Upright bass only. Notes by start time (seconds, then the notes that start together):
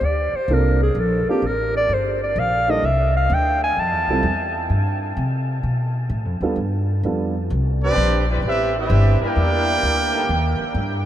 0.01 D2
0.33 muted upright bass stroke
0.48 C2
0.95 A#1
1.26 muted upright bass stroke
1.42 A1
1.89 G1
2.36 A#1
2.83 C2
3.30 D2
3.77 F2
3.92 E2
4.08 C2
4.23 E2
4.70 G2
5.17 C3
5.63 B2
6.10 A2
6.25 F2
6.41 D2
6.56 G2
7.03 F2
7.50 C2
7.96 A#1
8.42 A1
8.90 G1
9.21 muted upright bass stroke
9.36 E2
9.83 D2
10.29 D#2
10.60 muted upright bass stroke
10.74 G2